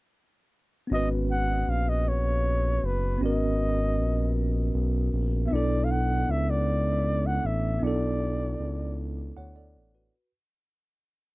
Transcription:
0.87 tine electric piano B3 C#4
0.91 analog synth bass G#1, tine electric piano F#4, flugelhorn D#5
0.95 tine electric piano B4
1.31 flugelhorn F#5
1.68 analog synth bass A#1, flugelhorn F5
1.89 flugelhorn D#5
2.08 flugelhorn C#5
2.83 analog synth bass F#1, flugelhorn B4
3.18 analog synth bass G#1, tine electric piano B3 C#4
3.23 tine electric piano F#4 A#4, flugelhorn D#5
3.98 analog synth bass A#1
4.75 analog synth bass B1
5.13 analog synth bass A#1
5.47 tine electric piano B3 D4, flugelhorn E5
5.52 analog synth bass B1, tine electric piano E4 A4, flugelhorn D5
5.84 flugelhorn F5
5.91 flugelhorn F#5
6.28 analog synth bass C#2, flugelhorn E5
6.50 flugelhorn D5
7.27 flugelhorn F#5
7.45 analog synth bass A1, flugelhorn E5
7.79 analog synth bass B1, tine electric piano B3 D4
7.83 tine electric piano E4 A4, flugelhorn D5
8.60 analog synth bass C#2
9.37 analog synth bass D2, tine electric piano C#5 F#5
9.56 tine electric piano A4 D5
9.76 analog synth bass A1
9.95 tine electric piano F#4 B4

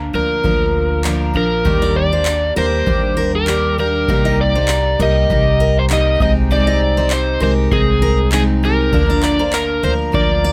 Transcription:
Already playing: upright bass D2, twelve-string acoustic guitar A#3 D4 A#4
0.13 upright bass D2, twelve-string acoustic guitar F3 A#3 D4 A#4, electric slide guitar A#4
0.43 upright bass D2, twelve-string acoustic guitar F3 A#3 D4 A#4, kick
1.04 twelve-string acoustic guitar F3 A#3 D4 A#4, clap
1.34 upright bass A#1, twelve-string acoustic guitar F3 A#3 D4 A#4, electric slide guitar A#4
1.65 upright bass D#2, twelve-string acoustic guitar D#3 G3 A#3 D4 G4, kick
1.82 steel-string acoustic guitar D5
1.96 electric slide guitar D5
2.12 twelve-string acoustic guitar A#3 D4 G4, steel-string acoustic guitar C5
2.25 clap
2.56 upright bass D#2, twelve-string acoustic guitar G3 A#3 D4 G4, steel-string acoustic guitar A#4, electric slide guitar C5
2.86 upright bass D#2, twelve-string acoustic guitar G3 A#3 D4 G4, kick
3.17 steel-string acoustic guitar A#4
3.35 electric slide guitar A#4
3.47 twelve-string acoustic guitar G3 A#3 D4 G4, clap
3.78 twelve-string acoustic guitar G3 A#3 D4 G4, electric slide guitar A#4
4.08 upright bass C2, twelve-string acoustic guitar C3 G3 A#3 D#4 G4, kick
4.25 steel-string acoustic guitar D#5
4.41 electric slide guitar D5
4.55 twelve-string acoustic guitar A#3 D#4 G4, steel-string acoustic guitar C5
4.68 clap
4.99 upright bass C2, twelve-string acoustic guitar G3 A#3 D#4 G4, steel-string acoustic guitar A#4, electric slide guitar D#5
5.29 upright bass C2, twelve-string acoustic guitar G3 A#3 D#4 G4, kick
5.60 steel-string acoustic guitar A#4
5.79 electric slide guitar C5
5.90 twelve-string acoustic guitar G3 A#3 D#4 G4, electric slide guitar D#5, clap
6.20 upright bass C2, twelve-string acoustic guitar G#3 C4 D#4 G4, electric slide guitar D#5, kick
6.51 twelve-string acoustic guitar C3 G#3 C4 D#4 G4, electric slide guitar D5
6.67 steel-string acoustic guitar D#5
6.97 twelve-string acoustic guitar C4 D#4 G4, steel-string acoustic guitar C5
7.10 electric slide guitar C5, clap
7.40 upright bass C2, twelve-string acoustic guitar G#3 C4 D#4 G4, steel-string acoustic guitar A#4, electric slide guitar C5
7.72 upright bass C2, twelve-string acoustic guitar G#3 C4 D#4, electric slide guitar G#4, kick
8.02 steel-string acoustic guitar A#4
8.32 twelve-string acoustic guitar G#3 C4 D#4, electric slide guitar G#4, clap
8.63 twelve-string acoustic guitar G#3 C4 D#4 G4, electric slide guitar A#4
8.93 upright bass D2, twelve-string acoustic guitar D3 F3 A#3 D4 A#4, kick
9.10 steel-string acoustic guitar D5
9.23 electric slide guitar D5, clap
9.39 twelve-string acoustic guitar A#3 D4 A#4, steel-string acoustic guitar C5
9.53 electric slide guitar A#4, clap
9.83 upright bass D2, twelve-string acoustic guitar F3 A#3 D4 A#4, steel-string acoustic guitar A#4, electric slide guitar C5
10.12 upright bass D2, twelve-string acoustic guitar F3 A#3 D4 A#4, electric slide guitar D5, kick
10.44 steel-string acoustic guitar D5

